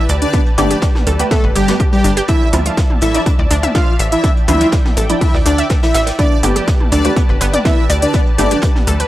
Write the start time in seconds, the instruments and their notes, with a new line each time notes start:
Already playing: synth stab A3 B3 G4, analog synth pad G4 B4 D5 A5
0.09 analog synth bass D2, synth arpeggio sound D5, closed hi-hat, open hi-hat
0.22 analog synth lead D4, analog polysynth D5, closed hi-hat
0.33 synth arpeggio sound B3, kick, closed hi-hat
0.46 closed hi-hat
0.58 analog synth bass G1, synth stab A3 B3 G4, analog synth lead D4, synth arpeggio sound G4, analog polysynth D5, closed hi-hat, open hi-hat, mid tom
0.71 synth arpeggio sound G4, closed hi-hat
0.82 kick, snare, closed hi-hat
0.95 snare, mid tom
1.07 analog synth bass D2, synth arpeggio sound A4, closed hi-hat, open hi-hat
1.19 synth stab A3 B3 G4, synth arpeggio sound B4, closed hi-hat
1.31 analog synth lead A3, synth arpeggio sound B3, analog polysynth A4, kick, snare, closed hi-hat
1.44 analog synth bass G1, synth arpeggio sound B4
1.55 analog synth bass G1, analog synth lead G3, synth arpeggio sound G4, analog polysynth G4, closed hi-hat, open hi-hat
1.68 synth stab A3 B3 G4, synth arpeggio sound B3, snare, closed hi-hat
1.80 synth arpeggio sound G4, kick, closed hi-hat
1.93 analog synth lead G3, analog polysynth G4, closed hi-hat
2.04 analog synth bass G1, synth arpeggio sound D4, closed hi-hat, open hi-hat
2.17 synth arpeggio sound G4, closed hi-hat
2.28 analog synth pad F3 E5 A5, synth arpeggio sound D4, analog synth lead E4, analog polysynth E5, kick, closed hi-hat
2.53 analog synth bass D2, synth stab F3 D4 E4, synth arpeggio sound F4, closed hi-hat, open hi-hat, mid tom
2.66 synth arpeggio sound F4, closed hi-hat
2.77 kick, snare, closed hi-hat
2.90 mid tom
3.01 analog synth bass A1, analog synth lead E4, synth arpeggio sound A4, analog polysynth E5, closed hi-hat, open hi-hat
3.14 synth stab F3 D4 E4, synth arpeggio sound D5, closed hi-hat
3.26 synth arpeggio sound D4, kick, closed hi-hat
3.39 analog synth bass D2, synth arpeggio sound D5
3.51 analog synth bass D2, synth arpeggio sound D4, closed hi-hat, open hi-hat
3.63 synth arpeggio sound E5, closed hi-hat, mid tom
3.75 synth arpeggio sound D4, analog synth lead F4, analog polysynth F5, kick, snare, closed hi-hat
3.99 analog synth bass A1, synth arpeggio sound E5, closed hi-hat, open hi-hat
4.12 analog synth lead E4, analog polysynth E5, closed hi-hat
4.24 synth arpeggio sound D4, analog synth pad G5, kick, closed hi-hat
4.37 closed hi-hat
4.48 analog synth bass D2, synth stab F3 D4 E4, analog synth lead E4, synth arpeggio sound F4, analog polysynth E5, closed hi-hat, open hi-hat, mid tom
4.61 synth arpeggio sound F4, closed hi-hat
4.72 kick, snare, closed hi-hat
4.85 snare, mid tom
4.97 analog synth bass A1, synth arpeggio sound A4, closed hi-hat, open hi-hat
5.10 synth stab F3 D4 E4, synth arpeggio sound D5, closed hi-hat
5.21 synth arpeggio sound D4, analog synth lead E4, analog polysynth E5, kick, closed hi-hat, open hi-hat
5.34 analog synth bass D2, synth arpeggio sound D5, snare
5.46 analog synth bass D2, synth arpeggio sound D4, analog synth lead D4, analog polysynth D5, closed hi-hat, open hi-hat
5.58 synth arpeggio sound E5, closed hi-hat
5.70 synth arpeggio sound D4, kick, snare, closed hi-hat
5.83 analog synth lead E4, analog polysynth E5, snare, closed hi-hat
5.94 analog synth bass A1, synth arpeggio sound E5, snare, closed hi-hat, open hi-hat
6.07 snare, closed hi-hat
6.19 synth arpeggio sound B3, analog synth lead D4, analog synth pad G4 B4 A5, analog polysynth D5, kick, closed hi-hat
6.43 analog synth bass G1, synth stab A3 B3 G4, synth arpeggio sound G4, closed hi-hat, open hi-hat, mid tom
6.56 synth arpeggio sound G4, closed hi-hat
6.68 kick, snare, closed hi-hat
6.80 mid tom
6.92 analog synth bass D2, analog synth lead D4, synth arpeggio sound A4, analog polysynth D5, closed hi-hat, open hi-hat
7.05 synth stab A3 B3 G4, synth arpeggio sound B4, closed hi-hat
7.16 synth arpeggio sound B3, kick, closed hi-hat
7.29 analog synth bass G1, synth arpeggio sound B4
7.41 analog synth bass G1, synth arpeggio sound B3, closed hi-hat, open hi-hat
7.53 synth arpeggio sound D5, closed hi-hat, mid tom
7.65 synth arpeggio sound B3, analog synth lead E4, analog polysynth E5, kick, snare, closed hi-hat
7.90 analog synth bass D2, synth arpeggio sound D5, closed hi-hat, open hi-hat
8.02 analog synth lead D4, analog polysynth D5, closed hi-hat
8.13 synth arpeggio sound B3, kick, closed hi-hat
8.26 closed hi-hat
8.38 analog synth bass G1, synth stab A3 B3 G4, analog synth lead D4, synth arpeggio sound G4, analog polysynth D5, closed hi-hat, open hi-hat, mid tom
8.51 synth arpeggio sound G4, closed hi-hat
8.62 kick, snare, closed hi-hat
8.75 snare, mid tom
8.87 analog synth bass D2, synth arpeggio sound A4, closed hi-hat, open hi-hat
9.00 synth arpeggio sound B4, closed hi-hat